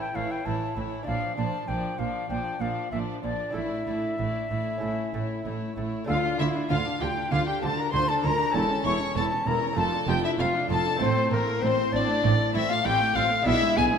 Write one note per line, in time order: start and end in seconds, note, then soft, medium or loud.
0.00 0.12 A2 soft
0.00 0.14 E3 medium
0.00 1.01 A3 soft
0.00 0.14 E4 medium
0.00 1.02 E4 soft
0.00 0.14 C#5 soft
0.00 1.02 C#5 soft
0.00 0.17 G5 medium
0.15 0.24 A1 medium
0.15 0.43 A2 soft
0.15 0.23 A2 medium
0.15 0.45 E3 soft
0.15 0.44 E4 soft
0.15 0.45 C#5 medium
0.15 0.33 F5 medium
0.31 0.47 G5 medium
0.45 0.55 A1 medium
0.45 0.54 A2 medium
0.45 0.74 A2 soft
0.45 0.76 E3 medium
0.45 0.75 E4 medium
0.45 0.76 C#5 medium
0.45 0.76 A5 medium
0.76 0.85 A1 medium
0.76 0.85 A2 medium
0.76 1.04 A2 soft
0.76 1.07 E3 soft
0.76 1.06 E4 medium
0.76 1.07 C#5 soft
1.03 3.49 D4 soft
1.03 1.36 D4 medium
1.03 3.50 D5 soft
1.03 1.35 F5 medium
1.07 1.16 A#1 medium
1.07 1.15 A#2 medium
1.07 1.35 A#2 soft
1.07 1.38 F3 medium
1.07 1.37 D5 medium
1.37 1.46 A#1 medium
1.37 1.46 A#2 medium
1.37 1.66 A#2 soft
1.37 1.68 F3 medium
1.37 1.67 D4 soft
1.37 1.67 D5 soft
1.37 1.69 A5 medium
1.68 1.77 A#1 medium
1.68 1.76 A#2 medium
1.68 1.96 A#2 soft
1.68 1.99 F3 medium
1.68 1.97 D4 soft
1.68 1.98 D5 medium
1.68 2.00 G5 medium
1.99 2.07 A#1 medium
1.99 2.07 A#2 medium
1.99 2.27 A#2 soft
1.99 2.29 F3 medium
1.99 2.29 D4 soft
1.99 2.29 D5 soft
1.99 2.29 F5 medium
2.29 2.38 A#1 medium
2.29 2.38 A#2 medium
2.29 2.58 A#2 soft
2.29 2.61 F3 soft
2.29 2.59 D4 soft
2.29 2.60 D5 soft
2.29 2.62 G5 medium
2.60 2.69 A#1 medium
2.60 2.69 A#2 medium
2.60 2.89 A#2 soft
2.60 2.91 F3 soft
2.60 2.91 D4 soft
2.60 2.91 D5 soft
2.60 2.91 F5 medium
2.92 3.00 A#1 medium
2.92 3.00 A#2 medium
2.92 3.21 A#2 soft
2.92 3.23 F3 soft
2.92 3.22 D4 medium
2.92 3.23 D5 soft
2.92 2.99 E5 medium
3.23 3.32 A#1 medium
3.23 3.31 A#2 soft
3.23 3.52 A#2 soft
3.23 3.55 F3 soft
3.23 3.55 D4 soft
3.23 3.55 D5 medium
3.23 3.54 D5 soft
3.51 4.76 D4 soft
3.51 4.77 E4 soft
3.51 4.78 A4 soft
3.55 3.64 A1 medium
3.55 3.63 A2 medium
3.55 3.84 A2 soft
3.55 3.86 A3 soft
3.55 3.86 E4 medium
3.55 3.86 D5 soft
3.55 5.73 E5 medium
3.87 3.96 A1 soft
3.87 4.16 A2 soft
3.87 3.95 A2 soft
3.87 4.18 A3 soft
3.87 4.18 E4 soft
3.87 4.19 D5 soft
4.19 4.27 A1 medium
4.19 4.27 A2 soft
4.19 4.47 A2 soft
4.19 4.50 A3 soft
4.19 4.50 E4 soft
4.19 4.50 D5 soft
4.51 4.59 A1 soft
4.51 4.59 A2 soft
4.51 4.79 A2 soft
4.51 4.82 A3 soft
4.51 4.81 E4 soft
4.51 4.82 D5 soft
4.78 6.02 C#4 soft
4.78 6.03 E4 soft
4.78 6.04 A4 soft
4.82 4.91 A1 soft
4.82 4.90 A2 medium
4.82 5.11 A2 soft
4.82 5.13 A3 soft
4.82 5.12 E4 soft
4.82 5.13 C#5 soft
5.13 5.22 A1 soft
5.13 5.42 A2 soft
5.13 5.22 A2 medium
5.13 5.44 A3 soft
5.13 5.44 E4 soft
5.13 5.45 C#5 soft
5.45 5.54 A1 medium
5.45 5.54 A2 soft
5.45 5.74 A2 soft
5.45 5.76 A3 soft
5.45 5.76 E4 soft
5.45 5.77 C#5 soft
5.77 5.85 A1 medium
5.77 5.85 A2 soft
5.77 6.05 A2 soft
5.77 6.08 A3 soft
5.77 6.08 E4 medium
5.77 6.08 C#5 soft
6.04 6.16 D3 medium
6.04 8.49 A3 soft
6.04 8.49 D4 soft
6.04 6.37 F4 medium
6.04 8.50 A4 soft
6.04 6.37 F5 medium
6.09 6.17 D2 medium
6.09 6.37 D3 medium
6.09 6.23 F4 medium
6.09 6.17 F5 medium
6.25 6.40 D4 medium
6.39 6.48 D2 medium
6.39 6.47 D3 medium
6.39 6.67 D3 medium
6.39 6.70 E4 medium
6.39 6.55 F4 medium
6.39 6.47 E5 medium
6.56 6.71 D4 medium
6.70 6.78 D2 medium
6.70 6.78 D3 medium
6.70 6.98 D3 medium
6.70 6.78 F4 medium
6.70 6.85 F4 medium
6.70 6.77 F5 medium
6.70 7.00 F5 loud
6.86 7.01 D4 medium
7.00 7.09 D2 medium
7.00 7.08 D3 medium
7.00 7.29 D3 medium
7.00 7.17 F4 medium
7.00 7.09 G4 medium
7.00 7.31 G5 medium
7.00 7.33 G5 medium
7.17 7.32 D4 medium
7.31 7.40 D2 medium
7.31 7.39 D3 medium
7.31 7.59 D3 medium
7.31 7.47 F4 medium
7.31 7.46 F4 medium
7.31 7.46 F5 loud
7.31 7.46 F5 medium
7.47 7.63 D4 medium
7.47 7.62 G4 medium
7.47 7.62 G5 medium
7.62 7.70 D2 medium
7.62 7.70 D3 medium
7.62 7.90 D3 medium
7.62 7.78 F4 medium
7.62 7.78 A4 medium
7.62 7.77 A5 loud
7.62 7.80 A5 medium
7.78 7.94 D4 medium
7.78 7.93 A#4 medium
7.78 7.93 A#5 medium
7.92 8.02 D2 medium
7.92 8.21 D3 medium
7.92 8.01 D3 medium
7.92 8.08 F4 medium
7.92 8.08 C5 medium
7.92 8.08 C6 medium
7.92 8.10 C6 loud
8.08 8.24 D4 medium
8.08 8.24 A4 medium
8.08 8.14 A5 medium
8.08 8.24 A5 medium
8.22 8.32 D2 medium
8.22 8.32 D3 medium
8.22 8.51 D3 medium
8.22 8.40 F4 medium
8.22 8.55 A#4 medium
8.22 8.53 A#5 loud
8.22 8.57 A#5 medium
8.41 8.55 D4 medium
8.50 9.71 A3 medium
8.50 9.72 C#4 soft
8.50 9.73 G4 medium
8.50 8.85 A5 loud
8.55 8.63 E1 medium
8.55 8.82 E2 medium
8.55 8.63 E2 medium
8.55 8.69 E4 medium
8.55 8.85 A4 medium
8.55 8.86 A5 medium
8.71 8.86 C#4 medium
8.85 8.94 E1 medium
8.85 8.93 E2 medium
8.85 9.13 E2 medium
8.85 9.01 E4 medium
8.85 9.16 C#5 medium
8.85 9.16 C#6 loud
8.85 8.93 C#6 medium
9.02 9.17 C#4 medium
9.15 9.24 E1 medium
9.15 9.43 E2 medium
9.15 9.24 E2 medium
9.15 9.31 E4 medium
9.15 9.25 A4 medium
9.15 9.24 A5 loud
9.15 9.49 A5 loud
9.32 9.47 C#4 medium
9.46 9.55 E1 medium
9.46 9.54 E2 medium
9.46 9.74 E2 medium
9.46 9.62 E4 medium
9.46 9.77 A#4 medium
9.46 9.77 A#5 medium
9.63 9.78 C#4 medium
9.73 9.85 F2 medium
9.73 10.95 A3 medium
9.73 10.96 F4 medium
9.77 9.86 F1 medium
9.77 10.05 F2 medium
9.77 9.92 F4 medium
9.77 10.07 A4 medium
9.77 10.08 A5 loud
9.77 9.85 A5 medium
9.93 10.08 D4 medium
10.08 10.17 F1 medium
10.08 10.16 F2 medium
10.08 10.36 F2 medium
10.08 10.23 F4 medium
10.08 10.14 G4 medium
10.08 10.24 G5 loud
10.08 10.23 G5 medium
10.23 10.39 D4 medium
10.23 10.38 E4 medium
10.23 10.30 E5 medium
10.23 10.30 E5 loud
10.39 10.47 F1 medium
10.39 10.47 F2 medium
10.39 10.67 F2 medium
10.39 10.70 F4 medium
10.39 10.53 F4 medium
10.39 10.47 F5 medium
10.39 10.70 F5 medium
10.55 10.70 D4 medium
10.69 10.78 F1 medium
10.69 10.77 F2 medium
10.69 10.98 F2 medium
10.69 10.85 F4 medium
10.69 11.00 A4 medium
10.69 11.00 A5 medium
10.86 11.01 D4 medium
10.96 13.40 A3 medium
10.96 13.41 C4 medium
10.96 11.31 C4 medium
10.96 13.41 E4 medium
11.01 11.09 A1 medium
11.01 11.09 A2 medium
11.01 11.28 A2 medium
11.01 11.15 C4 medium
11.01 11.31 C5 medium
11.01 11.32 C5 medium
11.16 11.32 A3 medium
11.31 11.40 A1 medium
11.31 11.59 A2 medium
11.31 11.39 A2 medium
11.31 11.62 A#3 medium
11.31 11.47 C4 medium
11.31 11.61 A#4 loud
11.31 11.64 A#4 medium
11.47 11.63 A3 medium
11.62 11.71 A1 medium
11.62 11.90 A2 medium
11.62 11.70 A2 medium
11.62 11.93 C4 medium
11.62 11.77 C4 medium
11.62 11.93 C5 loud
11.62 11.94 C5 medium
11.78 11.93 A3 medium
11.93 12.02 A1 medium
11.93 12.01 A2 medium
11.93 12.21 A2 medium
11.93 12.08 C4 medium
11.93 12.53 D4 medium
11.93 12.54 D5 medium
12.08 12.24 A3 medium
12.24 12.32 A1 medium
12.24 12.51 A2 medium
12.24 12.32 A2 medium
12.24 12.38 C4 medium
12.39 12.54 A3 medium
12.54 12.63 A1 medium
12.54 12.62 A2 medium
12.54 12.82 A2 medium
12.54 12.70 C4 medium
12.54 12.60 E4 medium
12.54 12.69 E5 loud
12.54 12.71 E5 medium
12.69 12.85 A3 medium
12.69 12.75 F4 medium
12.69 12.87 F5 medium
12.69 12.85 F5 loud
12.84 12.93 A1 medium
12.84 12.93 A2 medium
12.84 13.13 A2 medium
12.84 12.99 C4 medium
12.84 13.15 G4 medium
12.84 13.15 G5 loud
12.84 13.17 G5 loud
13.00 13.15 A3 medium
13.15 13.24 A1 medium
13.15 13.24 A2 medium
13.15 13.43 A2 medium
13.15 13.31 C4 medium
13.15 13.24 F4 medium
13.15 13.46 F5 loud
13.15 13.48 F5 loud
13.31 13.46 A3 medium
13.42 13.54 B1 loud
13.42 13.54 B2 medium
13.42 13.98 G#3 medium
13.42 13.60 B3 medium
13.42 13.98 D4 medium
13.42 13.98 E4 medium
13.42 13.76 E4 loud
13.42 13.76 E5 loud
13.42 13.78 E5 loud
13.47 13.74 B2 medium
13.61 13.76 G#3 medium
13.76 13.85 B1 medium
13.76 13.85 B2 medium
13.76 13.98 B2 medium
13.76 13.92 B3 medium
13.76 13.98 G#4 medium
13.76 13.84 G#5 loud
13.76 13.98 G#5 medium
13.93 13.98 G#3 medium